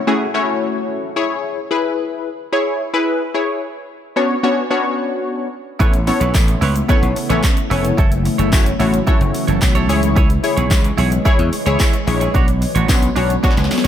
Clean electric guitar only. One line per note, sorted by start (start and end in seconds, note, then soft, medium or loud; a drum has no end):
5.79 5.95 E4 medium
5.79 5.93 B4 medium
5.79 5.92 C#5 medium
5.93 muted clean electric guitar stroke soft
6.07 muted clean electric guitar stroke soft
6.20 6.33 E4 medium
6.20 6.33 B4 medium
6.20 6.33 C#5 medium
6.34 muted clean electric guitar stroke soft
6.48 muted clean electric guitar stroke soft
6.61 6.77 E4 medium
6.61 6.75 B4 medium
6.61 6.74 C#5 loud
6.75 muted clean electric guitar stroke soft
6.88 7.04 E4 medium
6.88 7.03 B4 loud
6.88 7.01 C#5 loud
7.02 muted clean electric guitar stroke soft
7.16 muted clean electric guitar stroke soft
7.30 7.42 E4 medium
7.30 7.42 B4 medium
7.30 7.42 C#5 medium
7.43 muted clean electric guitar stroke soft
7.57 muted clean electric guitar stroke soft
7.70 7.86 E4 medium
7.70 7.84 B4 loud
7.70 7.83 C#5 medium
7.84 muted clean electric guitar stroke soft
7.97 8.13 E4 medium
7.97 8.11 A4 medium
7.97 8.10 C#5 medium
8.11 muted clean electric guitar stroke soft
8.25 muted clean electric guitar stroke soft
8.38 8.51 E4 medium
8.38 8.51 A4 medium
8.38 8.51 C#5 medium
8.52 muted clean electric guitar stroke soft
8.66 muted clean electric guitar stroke soft
8.80 8.95 E4 medium
8.80 8.93 A4 medium
8.80 8.92 C#5 loud
8.93 muted clean electric guitar stroke soft
9.07 9.22 E4 medium
9.07 9.21 A4 medium
9.07 9.19 C#5 loud
9.21 muted clean electric guitar stroke soft
9.34 muted clean electric guitar stroke soft
9.47 9.60 E4 medium
9.47 9.60 A4 medium
9.47 9.60 C#5 medium
9.62 muted clean electric guitar stroke soft
9.75 9.87 E4 medium
9.75 9.89 A4 medium
9.75 9.89 C#5 medium
9.88 10.01 E4 medium
9.88 10.01 G#4 medium
9.88 10.01 C#5 medium
10.16 10.31 E4 medium
10.16 10.30 G#4 medium
10.16 10.28 C#5 medium
10.29 muted clean electric guitar stroke medium
10.43 muted clean electric guitar stroke soft
10.57 10.69 E4 medium
10.57 10.69 G#4 medium
10.57 10.69 C#5 medium
10.71 muted clean electric guitar stroke medium
10.84 muted clean electric guitar stroke medium
10.98 11.13 E4 loud
10.98 11.12 G#4 loud
10.98 11.10 C#5 loud
11.11 muted clean electric guitar stroke medium
11.25 11.40 E4 medium
11.25 11.39 G#4 medium
11.25 11.38 C#5 loud
11.39 muted clean electric guitar stroke medium
11.52 muted clean electric guitar stroke soft
11.66 11.78 E4 medium
11.66 11.79 G#4 medium
11.66 11.78 C#5 medium
11.79 11.95 E4 medium
11.79 11.93 G#4 medium
11.79 11.92 C#5 loud
11.93 muted clean electric guitar stroke soft
12.07 muted clean electric guitar stroke soft
12.20 12.33 E4 medium
12.20 12.33 G#4 medium
12.20 12.33 C#5 medium
12.34 12.50 D4 medium
12.34 12.48 F#4 medium
12.34 12.47 C#5 loud
12.48 muted clean electric guitar stroke medium
12.61 muted clean electric guitar stroke soft
12.75 12.87 D4 medium
12.75 12.88 F#4 medium
12.75 12.87 C#5 medium
12.89 muted clean electric guitar stroke soft
13.02 muted clean electric guitar stroke medium
13.16 13.31 D4 medium
13.16 13.30 F#4 medium
13.16 13.28 C#5 medium
13.29 muted clean electric guitar stroke soft
13.43 13.58 D4 medium
13.43 13.57 F#4 medium
13.43 13.56 C#5 loud
13.57 muted clean electric guitar stroke soft
13.70 muted clean electric guitar stroke soft
13.84 13.87 C#5 medium